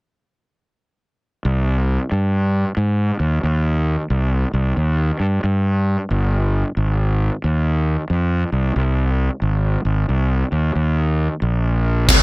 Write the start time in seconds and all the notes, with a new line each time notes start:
1.45 C2
2.12 G2
2.77 G#2
3.20 D#2
3.43 D#2
4.10 C2
4.53 C2
4.77 D#2
5.20 G2
5.44 G2
6.11 G1
6.77 G#1
7.44 D#2
8.10 F2
8.52 C2
8.76 C2
9.42 G#1
9.85 G#1
10.09 C2
10.52 D#2
10.75 D#2
11.42 A#1
12.08 C2, kick, crash